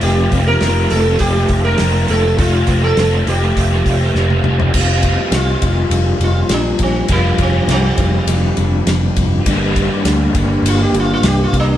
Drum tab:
CC |----------------|----------------|x---------------|----------------|
RD |----------------|----------------|--x-x-x-x-x-x-x-|x-x-x-x-x-x-x-x-|
HH |o-o-o-o-o-o-o-o-|o-o-o-o-o-o-----|----------------|----------------|
SD |----o-------o---|----o-------o---|----o-------o---|----o-------o---|
T1 |----------------|-------------o--|----------------|----------------|
T2 |----------------|--------------o-|----------------|----------------|
FT |----------------|---------------o|----------------|----------------|
BD |--o-----o-o-----|o-o-----o-o-----|o-o---o-------o-|o-o---o-------o-|

CC |----------------|
RD |x-x-x-x-x-x-x-x-|
HH |----------------|
SD |----o-------o---|
T1 |----------------|
T2 |----------------|
FT |----------------|
BD |o-o---o-------o-|